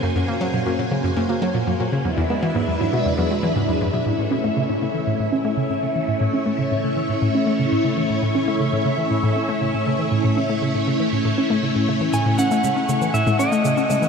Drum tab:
SH |----------------|----------------|----------------|----------------|
T1 |----------------|----------------|----------------|----------------|

SH |----------------|----------------|x-xxx-xxxxxxxxxx|
T1 |----------------|----------------|----o----o----o-|